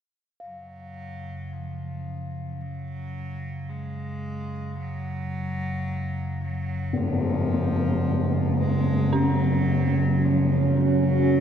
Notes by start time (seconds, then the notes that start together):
0.40 F#2 C#3 F#3 F5
1.53 F3
2.61 F#3
3.69 G#3
4.78 F#3
6.43 F#3
6.93 tam-tam
6.97 F3
8.61 G#3
9.13 F#3 C#4
10.11 F#4
10.25 F3
10.80 F#3